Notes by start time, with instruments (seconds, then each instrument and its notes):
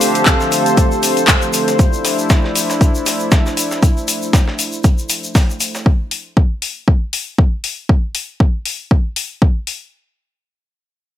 Already playing: analog synth pad D3 F3 A3 C4 A4 C5, ambient pad D4 G4 F5 A5
0.01 closed hi-hat, open hi-hat, shaker
0.15 closed hi-hat, shaker
0.26 kick, snare, clap, closed hi-hat, shaker
0.40 snare, shaker
0.52 closed hi-hat, open hi-hat, shaker
0.66 closed hi-hat, shaker
0.77 kick, closed hi-hat, shaker
0.92 shaker
1.03 closed hi-hat, open hi-hat, shaker
1.17 closed hi-hat, shaker
1.28 kick, snare, clap, closed hi-hat, open hi-hat, shaker
1.42 closed hi-hat, shaker
1.53 closed hi-hat, open hi-hat, shaker
1.68 snare, closed hi-hat, shaker
1.79 analog synth pad D4 E4, kick, closed hi-hat, shaker
1.93 shaker
2.05 snare, closed hi-hat, open hi-hat, shaker
2.18 shaker
2.29 kick, snare, closed hi-hat, shaker
2.44 snare
2.55 closed hi-hat, open hi-hat, shaker
2.70 snare, shaker
2.81 kick, closed hi-hat, shaker
2.95 shaker
3.06 snare, closed hi-hat, open hi-hat, shaker
3.19 shaker
3.32 kick, snare, closed hi-hat, shaker
3.46 snare, shaker
3.57 closed hi-hat, open hi-hat, shaker
3.71 snare, shaker
3.83 kick, closed hi-hat, shaker
3.97 shaker
4.08 closed hi-hat, open hi-hat, shaker
4.22 shaker
4.33 kick, snare, closed hi-hat, shaker
4.48 snare
4.59 closed hi-hat, open hi-hat, shaker
4.72 shaker
4.84 kick, closed hi-hat, shaker
4.98 shaker
5.09 closed hi-hat, open hi-hat, shaker
5.23 shaker
5.35 kick, snare, open hi-hat, shaker
5.50 shaker
5.60 closed hi-hat, open hi-hat, shaker
5.75 snare, shaker
5.86 kick
6.11 open hi-hat
6.37 kick
6.62 open hi-hat
6.88 kick
7.13 open hi-hat
7.38 kick
7.64 open hi-hat
7.89 kick
8.15 open hi-hat
8.40 kick
8.65 open hi-hat
8.91 kick
9.16 open hi-hat
9.42 kick
9.67 open hi-hat